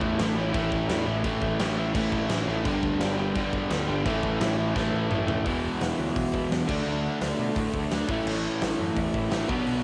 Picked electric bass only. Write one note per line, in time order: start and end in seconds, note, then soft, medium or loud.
0.01 0.18 E2 medium
0.19 0.53 A1 loud
0.54 0.88 A1 medium
0.89 1.05 E2 medium
1.06 1.23 A1 medium
1.24 1.41 A1 loud
1.42 1.59 A1 medium
1.59 1.94 A1 loud
1.95 2.12 A1 loud
2.12 2.29 A1 medium
2.29 2.47 A1 medium
2.47 2.64 A1 medium
2.65 2.82 G1 loud
2.83 2.99 D2 medium
3.00 3.34 G1 loud
3.36 3.69 G1 loud
3.71 3.88 D2 medium
3.88 4.05 G1 medium
4.06 4.22 A1 loud
4.23 4.40 A1 medium
4.41 4.74 A1 loud
4.76 4.92 A1 loud
4.93 5.10 A1 loud
5.11 5.28 A1 medium
5.28 5.45 A1 medium
5.46 5.67 E1 medium
5.81 5.91 E1 loud
5.99 6.09 D2 medium
6.16 6.27 B1 loud
6.33 6.44 E1 medium
6.51 6.62 E2 medium
6.69 6.79 D2 medium
6.86 7.07 D2 medium
7.21 7.32 D2 medium
7.39 7.49 B2 medium
7.56 7.67 A2 medium
7.74 7.84 D2 medium
7.91 8.02 D2 medium
8.09 8.19 A1 medium
8.26 8.47 A1 medium
8.61 8.72 A1 loud
8.79 8.90 F#2 medium
8.97 9.07 E2 medium
9.14 9.24 A1 loud
9.32 9.43 A1 medium
9.49 9.59 B1 medium
9.67 9.84 B1 medium